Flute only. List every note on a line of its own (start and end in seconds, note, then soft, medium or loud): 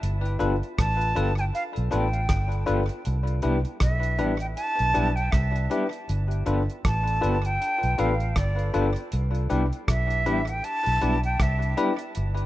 0.79 1.35 A5 loud
1.38 1.44 G5 medium
1.55 1.63 F5 medium
1.93 2.64 G5 medium
3.82 4.37 E5 medium
4.41 4.47 G5 medium
4.56 5.17 A5 loud
5.16 5.33 G5 medium
5.32 5.92 E5 medium
6.85 7.47 A5 loud
7.46 8.01 G5 loud
8.00 8.40 F5 medium
8.38 8.97 D5 medium
9.89 10.51 E5 medium
10.49 10.66 G5 medium
10.64 11.24 A5 loud
11.25 11.44 G5 medium
11.42 12.01 E5 medium